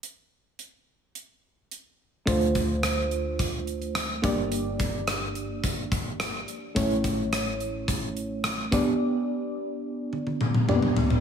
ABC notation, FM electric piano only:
X:1
M:4/4
L:1/8
Q:1/4=107
K:Dm
V:1 name="FM electric piano"
z8 | [A,DFc]6- [A,DFc] [B,DGd]- | [B,DGd]6- [B,DGd] z | [A,^CE^c]6- [A,CEc] [=B,DGd]- |
[=B,DGd]6 [_B,=B,DGd]2 |]